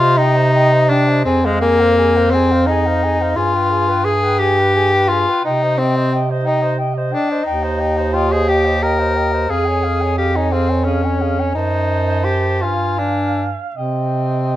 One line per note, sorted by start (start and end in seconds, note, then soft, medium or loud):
0.00 1.21 C3 medium
0.00 0.19 F4 loud
0.00 0.19 C5 medium
0.00 0.20 D#5 medium
0.17 0.91 D#4 loud
0.17 0.38 D#5 medium
0.17 0.38 G5 medium
0.36 0.52 C5 medium
0.36 0.54 D#5 soft
0.52 0.73 D#5 medium
0.52 0.74 G5 medium
0.72 0.91 C5 medium
0.72 0.93 D#5 medium
0.89 1.24 D4 medium
0.89 1.08 D#5 medium
0.89 1.10 G5 medium
1.06 1.25 C5 medium
1.06 1.26 D#5 medium
1.25 3.32 F2 medium
1.25 1.47 C4 medium
1.25 1.45 G#4 medium
1.25 1.46 G#5 medium
1.43 1.61 G#3 medium
1.43 1.63 C5 soft
1.43 1.64 F5 soft
1.61 2.33 A#3 loud
1.61 1.81 G#4 medium
1.61 1.82 G#5 medium
1.80 1.96 C5 medium
1.80 1.97 F5 medium
1.97 2.17 G#4 medium
1.97 2.18 G#5 medium
2.15 2.34 C5 medium
2.15 2.35 F5 medium
2.31 2.68 C4 medium
2.31 2.54 G#4 soft
2.31 2.53 G#5 medium
2.52 2.68 C5 soft
2.52 2.68 F5 medium
2.67 3.38 D#4 medium
2.67 2.89 G#4 medium
2.67 2.88 G#5 medium
2.86 3.05 C5 soft
2.86 3.05 F5 soft
3.03 3.22 G#4 medium
3.03 3.23 G#5 medium
3.20 3.35 C5 medium
3.20 3.38 F5 soft
3.36 5.27 G2 medium
3.36 4.06 F4 medium
3.36 3.56 G#4 soft
3.36 3.57 G#5 medium
3.54 3.72 B4 soft
3.54 3.74 G5 soft
3.71 3.90 G#4 medium
3.71 3.92 G#5 medium
3.89 4.05 B4 medium
3.89 4.05 G5 medium
4.05 4.40 G#4 medium
4.05 4.25 G#4 soft
4.05 4.25 G#5 medium
4.24 4.42 B4 medium
4.24 4.43 G5 soft
4.39 5.10 G4 loud
4.39 4.61 G#4 medium
4.39 4.60 G#5 medium
4.59 4.75 B4 soft
4.59 4.75 G5 soft
4.75 4.96 G#4 medium
4.75 4.95 G#5 medium
4.93 5.13 B4 medium
4.93 5.14 G5 soft
5.09 5.44 F4 medium
5.09 5.31 G#4 medium
5.09 5.31 G#5 soft
5.29 5.45 B4 soft
5.29 5.45 G5 soft
5.44 7.15 C3 medium
5.44 5.80 D#4 medium
5.44 5.64 D#5 soft
5.44 5.64 G5 medium
5.63 5.82 C5 soft
5.63 5.80 D#5 soft
5.78 6.21 C4 medium
5.78 5.98 D#5 medium
5.78 5.98 G5 soft
5.96 6.12 C5 soft
5.96 6.11 D#5 soft
6.12 6.32 D#5 medium
6.12 6.31 G5 medium
6.30 6.49 C5 soft
6.30 6.47 D#5 soft
6.44 6.75 D#4 medium
6.44 6.65 D#5 medium
6.44 6.63 G5 soft
6.62 6.79 C5 soft
6.62 6.78 D#5 soft
6.78 6.99 D#5 soft
6.78 6.96 G5 medium
6.95 7.16 C5 soft
6.95 7.14 D#5 soft
7.12 7.46 D4 medium
7.12 7.33 D#5 medium
7.12 7.31 G5 medium
7.30 7.46 C5 medium
7.30 7.45 D#5 medium
7.44 9.45 D#2 medium
7.44 8.15 D#4 medium
7.44 7.64 D#5 soft
7.44 7.65 G5 medium
7.63 7.82 C5 soft
7.63 7.81 D#5 soft
7.79 7.99 D#5 medium
7.79 7.98 G5 medium
7.97 8.14 C5 medium
7.97 8.12 D#5 medium
8.13 8.33 F4 medium
8.13 8.34 D#5 medium
8.13 8.31 G5 medium
8.29 8.50 G#4 medium
8.29 8.51 C5 medium
8.29 8.50 D#5 soft
8.48 8.84 G4 medium
8.48 8.67 D#5 medium
8.48 8.67 G5 medium
8.65 8.82 C5 soft
8.65 8.82 D#5 soft
8.82 9.52 A#4 medium
8.82 9.01 D#5 medium
8.82 9.01 G5 soft
8.99 9.18 C5 soft
8.99 9.17 D#5 soft
9.15 9.35 D#5 medium
9.15 9.34 G5 soft
9.33 9.50 C5 soft
9.33 9.49 D#5 soft
9.49 11.51 F2 medium
9.49 10.17 G#4 medium
9.49 9.70 G#4 soft
9.49 9.67 F5 medium
9.66 9.88 C#5 soft
9.66 9.85 G#5 medium
9.84 10.04 G#4 medium
9.84 10.03 F5 medium
10.01 10.18 C#5 soft
10.01 10.17 G#5 soft
10.18 10.38 G4 medium
10.18 10.36 G#4 soft
10.18 10.37 F5 soft
10.35 10.53 D#4 medium
10.35 10.54 C#5 soft
10.35 10.54 G#5 soft
10.52 10.86 C4 medium
10.52 10.70 G#4 medium
10.52 10.71 F5 soft
10.69 10.86 C#5 soft
10.69 10.86 G#5 soft
10.84 11.54 C#4 medium
10.84 11.04 G#4 medium
10.84 11.06 F5 soft
11.02 11.21 C#5 soft
11.02 11.23 G#5 soft
11.20 11.40 G#4 soft
11.20 11.42 F5 medium
11.39 11.56 C#5 soft
11.39 11.56 G#5 soft
11.55 12.65 F#2 medium
11.55 12.26 D#4 medium
11.55 12.64 C5 medium
11.55 12.65 A5 medium
12.24 12.63 G4 medium
12.62 13.59 G2 medium
12.62 13.00 F4 medium
12.62 13.78 F5 medium
12.62 13.60 G#5 medium
12.99 13.48 D4 medium
13.76 14.56 C3 medium
13.76 14.56 C4 medium
13.76 14.56 D#5 soft
13.76 14.56 G5 soft